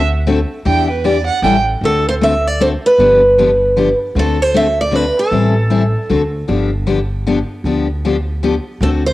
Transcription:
Already playing: upright bass D2
0.27 steel-string acoustic guitar D3 A3 C4 F#4 A4
0.65 upright bass E2, steel-string acoustic guitar E3 B3 D4 G4, violin G5
0.91 violin B4
1.04 steel-string acoustic guitar E3 B3 D4 G4, violin D5
1.27 violin F#5
1.42 upright bass A1, steel-string acoustic guitar E3 G3 C#4 E4 A4, violin G5
1.81 upright bass D2, steel-string acoustic guitar D3 A3 C4 F#4 A4
1.85 steel-string acoustic guitar A4
2.09 steel-string acoustic guitar C5
2.21 steel-string acoustic guitar D3 A3 C4 F#4 A4 E5
2.47 steel-string acoustic guitar D5
2.60 steel-string acoustic guitar D3 A3 C4 F#4 A4 C5
2.86 steel-string acoustic guitar B4
2.98 upright bass G1, steel-string acoustic guitar D3 F3 B3 D4 G4
3.38 steel-string acoustic guitar D3 F3 B3 D4 G4
3.77 steel-string acoustic guitar D3 F3 B3 D4 G4
4.15 upright bass D2, steel-string acoustic guitar D3 A3 C4 F#4 A4
4.19 steel-string acoustic guitar A4
4.42 steel-string acoustic guitar C5
4.54 steel-string acoustic guitar D3 A3 C4 F#4 A4 E5
4.81 steel-string acoustic guitar D5
4.91 steel-string acoustic guitar D3 A3 C4 F#4 A4
4.95 steel-string acoustic guitar B4
5.19 steel-string acoustic guitar A4
5.31 upright bass A1, steel-string acoustic guitar E3 G3 C4 E4 A4
5.70 steel-string acoustic guitar E3 G3 C4 E4 A4
6.09 upright bass D2, steel-string acoustic guitar D3 A3 C4 F#4 A4
6.48 upright bass G1, steel-string acoustic guitar D3 F3 B3 D4 G4
6.87 steel-string acoustic guitar D3 F3 B3 D4 G4
7.27 steel-string acoustic guitar D3 F3 B3 D4 G4
7.64 upright bass D2, steel-string acoustic guitar D3 F3 B3 D4 G4
8.05 steel-string acoustic guitar D3 F3 B3 D4 G4
8.43 steel-string acoustic guitar D3 F3 B3 D4 G4
8.81 upright bass D2, steel-string acoustic guitar D3 A3 C4 F#4 A4
9.06 steel-string acoustic guitar C5

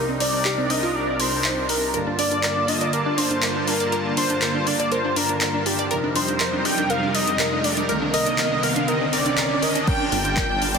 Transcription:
Already playing: supersaw synth C2 C3 D4 D#4 A#4
0.08 synth pluck C4
0.20 synth pluck C4, analog synth lead D5, open hi-hat
0.33 synth pluck C4
0.45 synth pluck G4, clap
0.58 synth pluck C4
0.70 synth pluck C4, analog synth lead D#5, open hi-hat
0.83 synth pluck F4
0.95 analog synth lead D5
1.20 analog synth lead C5, open hi-hat
1.44 clap
1.69 analog synth lead A#4, open hi-hat
1.94 supersaw synth G2 D3 A#3 F4 A5, synth pluck A#4, closed hi-hat, riser
2.07 synth pluck D4
2.19 synth pluck D4, analog synth lead D5, open hi-hat
2.32 synth pluck D4, closed hi-hat
2.43 synth pluck A#4, clap, closed hi-hat
2.56 synth pluck D4
2.68 synth pluck D4, analog synth lead D#5, open hi-hat
2.81 synth pluck D5, closed hi-hat
2.93 synth pluck A#4, analog synth lead D5, closed hi-hat
3.06 synth pluck D4
3.18 synth pluck D4, analog synth lead C5, open hi-hat
3.31 synth pluck D4, closed hi-hat
3.42 synth pluck A#4, clap, closed hi-hat
3.56 synth pluck D4
3.67 synth pluck D4, analog synth lead A#4, open hi-hat
3.80 synth pluck D5, closed hi-hat
3.92 synth pluck A#4, closed hi-hat
4.05 synth pluck D4
4.17 synth pluck D4, analog synth lead C5, open hi-hat
4.30 synth pluck D4, closed hi-hat
4.42 synth pluck A#4, clap, closed hi-hat
4.55 synth pluck D4
4.67 synth pluck D4, analog synth lead D5, open hi-hat
4.80 synth pluck D5, closed hi-hat
4.91 synth pluck A#4, analog synth lead C5, closed hi-hat
5.05 synth pluck D4
5.16 synth pluck D4, analog synth lead A#4, open hi-hat
5.29 synth pluck D4, closed hi-hat
5.41 synth pluck A#4, clap, closed hi-hat
5.54 synth pluck D4
5.66 synth pluck D4, analog synth lead G4, open hi-hat
5.79 synth pluck D5, closed hi-hat
5.91 supersaw synth F2 C3 G3 D#4 A#4, synth pluck A#4, closed hi-hat
6.04 synth pluck D4
6.16 synth pluck D4, analog synth lead C5, open hi-hat
6.28 synth pluck D4, closed hi-hat
6.40 synth pluck A#4, clap, closed hi-hat
6.53 synth pluck D4
6.65 synth pluck D4, analog synth lead G5, open hi-hat
6.78 synth pluck D4, closed hi-hat
6.90 synth pluck A#4, analog synth lead F5, closed hi-hat
7.03 synth pluck D4
7.15 synth pluck D4, analog synth lead D#5, open hi-hat
7.27 synth pluck D4, closed hi-hat
7.39 synth pluck A#4, clap, closed hi-hat
7.52 synth pluck D4
7.64 synth pluck D4, analog synth lead D5, open hi-hat
7.77 synth pluck D4, closed hi-hat
7.89 supersaw synth C2 C3 D3 D#3, synth pluck A#4, closed hi-hat
8.02 synth pluck D4
8.14 synth pluck A#4, analog synth lead D#5, open hi-hat
8.27 synth pluck D4, closed hi-hat
8.38 synth pluck A#4, clap, closed hi-hat
8.51 synth pluck D4
8.63 synth pluck A#4, analog synth lead F5, open hi-hat
8.76 synth pluck D4, closed hi-hat
8.88 synth pluck A#4, analog synth lead D#5, closed hi-hat
9.01 synth pluck D4
9.13 synth pluck A#4, analog synth lead D5, open hi-hat
9.26 synth pluck D4, closed hi-hat
9.37 synth pluck A#4, clap, closed hi-hat
9.51 synth pluck D4
9.63 synth pluck A#4, analog synth lead D#5, open hi-hat
9.75 synth pluck D4, closed hi-hat
9.87 supersaw synth D3 G3 F4 A#4, synth pluck A#4, analog synth lead G5, violin section G5, kick, closed hi-hat, crash
10.00 synth pluck D4
10.12 detuned saw bass G1, synth pluck D4, analog synth lead G5, violin section G5, open hi-hat
10.25 synth pluck D4, closed hi-hat
10.37 synth pluck A#4, kick, clap, closed hi-hat
10.50 detuned saw bass G1, synth pluck D4
10.62 synth pluck D4, open hi-hat
10.74 synth pluck D5, closed hi-hat

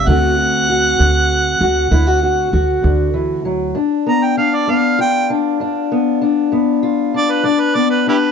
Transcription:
Already playing: harmonica E5
0.07 upright bass D2, steel-string acoustic guitar D3 A3 C4 F#4, harmonica F#5
0.39 steel-string acoustic guitar F#4
0.70 steel-string acoustic guitar F#4
0.99 upright bass D2, steel-string acoustic guitar D3
1.61 upright bass D2, steel-string acoustic guitar F#4
1.91 upright bass D2, steel-string acoustic guitar D3 E4
2.07 steel-string acoustic guitar F#4
2.23 steel-string acoustic guitar F#4
2.53 upright bass D2, steel-string acoustic guitar F#4
2.83 upright bass D2, steel-string acoustic guitar D3
3.14 steel-string acoustic guitar E3
3.45 steel-string acoustic guitar F#3
3.75 steel-string acoustic guitar G2 D4
4.06 steel-string acoustic guitar B3, harmonica A#5
4.25 harmonica G5
4.37 steel-string acoustic guitar D4, harmonica F5
4.55 harmonica D5
4.67 steel-string acoustic guitar G2 B3, harmonica F5
4.99 steel-string acoustic guitar F4, harmonica G5
5.30 steel-string acoustic guitar D4
5.60 steel-string acoustic guitar G2 D4
5.92 steel-string acoustic guitar B3
6.22 steel-string acoustic guitar D4
6.52 steel-string acoustic guitar G2 B3
6.83 steel-string acoustic guitar F4
7.14 steel-string acoustic guitar D4, harmonica D5
7.31 harmonica B4
7.43 steel-string acoustic guitar G2 D4, harmonica D5
7.61 harmonica B4
7.75 steel-string acoustic guitar B3, harmonica D5
7.91 harmonica B4
8.07 steel-string acoustic guitar D4, harmonica E4 G4 B4

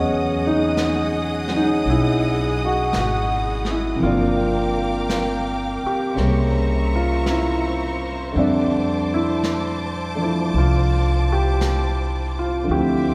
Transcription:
Already playing: upright bass E2, upright piano C#3 F#3 B3 C#4 D#5, string section G#4 D#5 F#5 D#6
0.47 upright piano D#4
0.77 brush sweep, snare, hi-hat pedal
1.48 upright piano F#3 G#3 C#4, snare
1.56 upright piano D#4
1.84 upright bass B1, brush sweep
1.90 upright piano E4
2.65 upright piano F#4
2.93 upright bass G#1, brush sweep, snare, hi-hat pedal
2.98 upright piano F#4
3.65 snare
3.71 upright piano E4
3.96 upright piano C3 F3, string section A#4 F5 G5 D6
4.01 upright bass G1, upright piano A#3 F4, brush sweep
4.06 upright piano D4
5.09 brush sweep, snare, hi-hat pedal
5.84 upright piano G4, muted upright bass stroke
6.15 upright bass C2, upright piano C#3 G3 A#3, string section C5 E5 A#5 C#6, brush sweep, snare
6.19 upright piano C#4
6.96 upright piano F4
7.26 brush sweep, snare, hi-hat pedal
7.30 upright piano E4
8.32 upright bass F2, upright piano D3 G3 C4, string section A5 D6, brush sweep
8.37 upright piano D4 E5
9.14 upright piano E4
9.43 brush sweep, snare, hi-hat pedal
10.15 upright piano F3 A3 D4
10.23 upright piano E4
10.53 upright bass C2, brush sweep
10.58 upright piano F4
11.32 upright piano G4
11.61 brush sweep, snare, hi-hat pedal
12.39 upright piano F4
12.64 upright piano D3 F3
12.69 upright bass D2, upright piano C4 G4, string section C5 E5 D6, brush sweep
12.75 upright piano E4

